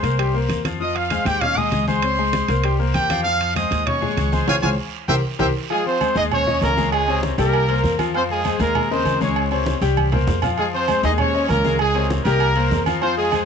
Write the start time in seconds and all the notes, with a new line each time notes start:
Already playing: C5 C6
0.03 C2 A#3 A#4 C5, high timbale, short guiro
0.18 G3 G4 G5, high conga, high timbale, long guiro
0.34 A#3 A#4 C5, high conga
0.49 F2, high conga, high timbale, short guiro
0.65 F3 F4 F5, high conga, high timbale, short guiro
0.80 F3 F4 D#5 F5 D#6, high conga, long guiro
0.95 F5, high conga, high timbale
1.10 G#3 G#4 C5, high conga, high timbale, short guiro
1.25 D#2 G4 G5, high conga, high timbale, short guiro
1.41 C#4 C#5 D#5 F5, high conga, low conga, high timbale, long guiro
1.57 G#3 G#4 D#5 G#5 D#6, high conga, low conga
1.72 C#2, high conga, high timbale, short guiro
1.87 G#3 G#4 C5 G#5 C6, high conga, short guiro
2.02 C4 C5 C#5, high timbale, long guiro
2.18 G#3 G#4 G#5, high conga
2.33 high conga, high timbale, short guiro
2.48 C2 A#3 A#4 C5, high timbale, short guiro
2.64 G3 G4 G5, high conga, high timbale, long guiro
2.79 A#3 A#4 C5, high conga
2.94 F2 G4 G5, high conga, high timbale, short guiro
3.10 F3 F4 F5, high conga, high timbale, short guiro
3.24 F3 F4 F5, high conga, long guiro
3.41 high conga, high timbale
3.55 G#3 G#4 C5 D#5 D#6, high conga, high timbale, short guiro
3.71 D#2, high conga, high timbale, short guiro
3.86 C#4 C#5 D#5 C#6, high conga, low conga, high timbale, long guiro
4.01 G#3 G#4 G#5, high conga, low conga
4.17 C#2, high conga, high timbale, short guiro
4.32 G#3 G#4 C5 G#5 C6, high conga, short guiro
4.47 C#2 G#4 C5 C#5 F5 G#5, high conga, high timbale, long guiro
4.62 C#2 G#4 C5 C#5 F5 G#5, high conga, high timbale, long guiro
5.08 C2 G4 A#4 C5 E5 G5, high conga, high timbale, long guiro
5.39 C2 G4 A#4 C5 E5 G5, high conga, high timbale, long guiro
5.70 F3 G#3 F4 G#4 F5, high conga, low agogo, long guiro
5.86 C4 C5, high conga
6.01 G#3 G#4 C5, high conga, low agogo, short guiro
6.16 D#2 G#3 D#4 G#4 D#5 G#5, high conga, low agogo, short guiro
6.31 C#4 C#5, high conga, low conga, low agogo, long guiro
6.47 C#4 C#5 D#5, high conga, low conga
6.61 C#2 A#3 A#4, high conga, low timbale, low agogo, short guiro
6.77 G#3 G#4 G#5, high conga, short guiro
6.92 G#3 G#4, high conga, low agogo, long guiro
7.08 C3 C5 C#5, high conga, low agogo
7.23 high conga, short guiro
7.38 C2 G3 A#3 G4 A#4 G5, low agogo, short guiro
7.53 high conga, low agogo, long guiro
7.69 A#3 A#4 C5, high conga, low agogo
7.83 F2, high conga, short guiro
7.99 F3 F4 F5, high conga, low agogo, short guiro
8.14 F3 C4 F4 C5 F5, high conga, low agogo, long guiro
8.30 G#3 G#4, high conga
8.44 G#3 G#4 C5, high conga, low agogo, short guiro
8.59 D#2 G#3 A#3 G#4 A#4 G#5, high conga, low agogo, short guiro
8.75 high conga, low conga, low agogo, long guiro
8.91 C#3 C4 A#4 C5 D#5, high conga
9.05 C#2, high conga, low agogo, short guiro
9.21 G#3 C#4 G#4 C#5 G#5, high conga, short guiro
9.36 high conga, low agogo, long guiro
9.51 C3 C5 C#5, high conga, low agogo
9.66 high conga, short guiro
9.81 C2 G3 G4 G5, low agogo, short guiro
9.97 high conga, low agogo, long guiro
10.12 A#3 A#4 C5, low conga, low agogo
10.27 F2, low conga, low timbale, short guiro
10.42 F3 F4 F5, low conga, low agogo, short guiro
10.57 F3 G#3 F4 G#4 F5, high conga, low agogo, long guiro
10.73 C4 C5, high conga
10.88 G#3 G#4 C5, high conga, low agogo, short guiro
11.03 D#2 G#3 D#4 G#4 D#5 G#5, high conga, low agogo, short guiro
11.18 C#4 C#5, high conga, low conga, low agogo, long guiro
11.34 C#4 C#5 D#5, high conga
11.49 C#2 A#3 A#4, high conga, low agogo, short guiro
11.64 G#3 G#4 G#5, high conga, short guiro
11.79 G#3 G#4, high conga, low agogo, long guiro
11.95 C3 C5 C#5, high conga, low agogo
12.10 high conga, short guiro
12.25 C2 G3 A#3 G4 A#4 G5, low agogo, short guiro
12.40 high conga, low agogo, long guiro
12.56 A#3 A#4 C5, high conga, low agogo
12.71 F2, high conga, low timbale, short guiro
12.86 F3 F4 F5, high conga, low agogo, short guiro
13.01 F3 C4 F4 C5 F5, high conga, low agogo, long guiro
13.16 G#3 G#4, high conga
13.32 G#3 G#4 C5, high conga, low agogo, short guiro